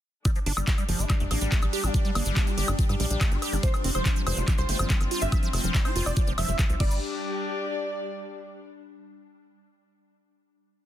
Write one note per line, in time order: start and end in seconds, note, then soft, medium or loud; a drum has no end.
0.25 6.80 G3 medium
0.25 0.31 G3 medium
0.25 6.80 D4 medium
0.25 4.98 D4 medium
0.25 kick loud
0.25 closed hi-hat medium
0.25 cabasa medium
0.25 high woodblock soft
0.35 0.39 F3 medium
0.35 closed hi-hat soft
0.35 cabasa soft
0.46 0.53 G1 loud
0.46 0.52 D4 loud
0.46 4.87 D5 medium
0.46 open hi-hat loud
0.57 0.63 G1 medium
0.57 0.66 G3 medium
0.57 4.98 G4 medium
0.57 cabasa medium
0.57 high woodblock medium
0.67 kick loud
0.67 clap loud
0.67 closed hi-hat medium
0.67 cabasa medium
0.78 0.84 G3 medium
0.78 closed hi-hat soft
0.78 cabasa soft
0.78 high woodblock soft
0.89 0.95 G1 medium
0.89 1.01 F3 medium
0.89 open hi-hat medium
0.99 1.05 G1 medium
0.99 1.05 A3 medium
0.99 closed hi-hat soft
0.99 cabasa medium
1.10 1.16 G3 medium
1.10 kick loud
1.10 clap medium
1.10 closed hi-hat medium
1.10 cabasa medium
1.10 high woodblock medium
1.20 1.26 F1 medium
1.20 1.24 A3 medium
1.20 closed hi-hat soft
1.20 cabasa soft
1.31 1.37 A1 loud
1.31 1.40 A#3 medium
1.31 open hi-hat loud
1.31 high woodblock soft
1.41 1.48 A1 medium
1.41 1.53 G3 medium
1.41 closed hi-hat soft
1.41 cabasa medium
1.52 1.61 A3 loud
1.52 kick loud
1.52 clap loud
1.52 closed hi-hat medium
1.52 cabasa medium
1.62 1.69 A1 medium
1.62 1.66 G3 medium
1.62 closed hi-hat soft
1.62 cabasa soft
1.62 high woodblock medium
1.73 1.85 G4 loud
1.73 open hi-hat medium
1.84 1.90 A1 medium
1.84 1.90 A3 medium
1.84 closed hi-hat soft
1.84 cabasa medium
1.84 high woodblock soft
1.94 2.00 G3 medium
1.94 kick loud
1.94 closed hi-hat medium
1.94 cabasa medium
2.05 2.11 G3 loud
2.05 closed hi-hat soft
2.05 cabasa soft
2.15 2.22 G1 loud
2.15 2.24 A#3 medium
2.15 open hi-hat loud
2.15 high woodblock medium
2.25 2.32 G1 medium
2.25 2.38 G3 loud
2.25 closed hi-hat soft
2.25 cabasa medium
2.36 2.49 A3 loud
2.36 kick loud
2.36 clap loud
2.36 closed hi-hat medium
2.36 cabasa medium
2.36 high woodblock soft
2.47 2.53 G4 loud
2.47 closed hi-hat soft
2.47 cabasa soft
2.58 2.64 G1 medium
2.58 2.70 G4 loud
2.58 open hi-hat loud
2.68 2.74 G1 medium
2.68 2.72 A#3 loud
2.68 closed hi-hat soft
2.68 cabasa medium
2.68 high woodblock medium
2.79 2.85 G3 medium
2.79 kick loud
2.79 closed hi-hat medium
2.79 cabasa medium
2.89 2.96 G2 medium
2.89 2.95 G3 loud
2.89 closed hi-hat soft
2.89 cabasa soft
2.89 high woodblock soft
3.00 3.06 A#1 loud
3.00 3.06 G3 loud
3.00 open hi-hat loud
3.10 3.17 A#1 medium
3.10 3.22 G3 medium
3.10 closed hi-hat soft
3.10 cabasa medium
3.21 3.33 A3 loud
3.21 kick loud
3.21 clap loud
3.21 closed hi-hat medium
3.21 cabasa medium
3.21 high woodblock medium
3.31 3.38 G1 medium
3.31 3.37 G4 loud
3.31 closed hi-hat soft
3.31 cabasa soft
3.42 3.54 G4 loud
3.42 open hi-hat loud
3.42 high woodblock soft
3.53 3.59 G1 medium
3.53 3.56 A#3 loud
3.53 closed hi-hat soft
3.53 cabasa medium
3.63 3.69 F3 medium
3.63 6.80 C4 medium
3.63 3.84 C5 loud
3.63 kick loud
3.63 closed hi-hat medium
3.63 cabasa medium
3.71 3.77 E3 medium
3.71 6.80 F4 medium
3.71 closed hi-hat soft
3.71 cabasa soft
3.71 high woodblock medium
3.84 3.91 F1 medium
3.84 3.90 C4 loud
3.84 open hi-hat loud
3.95 4.01 F1 medium
3.95 4.04 F3 medium
3.95 4.16 C5 loud
3.95 closed hi-hat soft
3.95 cabasa medium
3.95 high woodblock soft
4.05 kick loud
4.05 clap loud
4.05 closed hi-hat medium
4.05 cabasa medium
4.16 4.22 F3 medium
4.16 closed hi-hat soft
4.16 cabasa soft
4.27 4.33 F1 loud
4.27 4.39 E3 medium
4.27 4.48 C5 loud
4.27 open hi-hat loud
4.27 high woodblock medium
4.37 4.43 F1 medium
4.37 4.43 G4 medium
4.37 closed hi-hat soft
4.37 cabasa medium
4.48 4.54 F3 medium
4.48 kick loud
4.48 clap medium
4.48 closed hi-hat medium
4.48 cabasa medium
4.48 high woodblock soft
4.58 4.65 C2 medium
4.58 4.62 G3 medium
4.58 4.79 C5 loud
4.58 closed hi-hat soft
4.58 cabasa soft
4.69 4.75 G1 medium
4.69 4.78 A3 medium
4.69 open hi-hat loud
4.79 4.86 G1 medium
4.79 4.92 F3 medium
4.79 6.80 C5 medium
4.79 closed hi-hat soft
4.79 cabasa medium
4.79 high woodblock medium
4.90 4.99 G3 loud
4.90 kick loud
4.90 clap loud
4.90 closed hi-hat medium
4.90 cabasa medium
5.00 5.07 G1 medium
5.00 5.04 F3 medium
5.00 closed hi-hat soft
5.00 cabasa soft
5.00 high woodblock soft
5.11 5.23 F4 loud
5.11 open hi-hat loud
5.21 5.28 G1 medium
5.21 5.28 G4 medium
5.21 5.43 E5 loud
5.21 cabasa medium
5.32 5.38 F3 medium
5.32 kick loud
5.32 closed hi-hat medium
5.32 cabasa medium
5.32 high woodblock medium
5.43 5.49 F3 loud
5.43 closed hi-hat soft
5.43 cabasa soft
5.53 5.60 F1 loud
5.53 5.62 A3 medium
5.53 open hi-hat loud
5.53 high woodblock soft
5.64 5.70 F1 medium
5.64 5.76 F3 loud
5.64 closed hi-hat soft
5.64 cabasa medium
5.74 5.87 G3 loud
5.74 kick loud
5.74 clap loud
5.74 closed hi-hat medium
5.74 cabasa medium
5.85 5.91 F4 loud
5.85 5.99 C5 loud
5.85 closed hi-hat soft
5.85 cabasa soft
5.85 high woodblock medium
5.96 6.02 F1 loud
5.96 6.08 F4 loud
5.96 open hi-hat loud
6.06 6.12 F1 medium
6.06 6.10 A3 loud
6.06 6.27 D5 loud
6.06 closed hi-hat soft
6.06 cabasa medium
6.06 high woodblock soft
6.16 6.23 F3 medium
6.16 kick loud
6.16 closed hi-hat medium
6.16 cabasa medium
6.27 6.34 F1 medium
6.27 6.33 F3 loud
6.27 closed hi-hat soft
6.27 cabasa soft
6.38 6.44 F1 medium
6.38 6.47 F3 medium
6.38 6.80 E5 loud
6.38 open hi-hat loud
6.38 high woodblock medium
6.48 6.55 F1 medium
6.48 6.52 F3 medium
6.48 closed hi-hat soft
6.48 cabasa medium
6.59 6.65 F3 medium
6.59 kick loud
6.59 clap loud
6.59 closed hi-hat medium
6.59 cabasa medium
6.59 high woodblock soft
6.70 6.76 C2 medium
6.70 6.75 F3 medium
6.70 closed hi-hat soft
6.70 cabasa soft
6.80 7.00 G1 loud
6.80 7.00 G3 loud
6.80 8.45 D4 medium
6.80 6.96 D5 loud
6.80 kick loud
6.80 crash medium
6.86 8.45 G4 medium
6.91 cabasa medium
7.14 8.66 D5 medium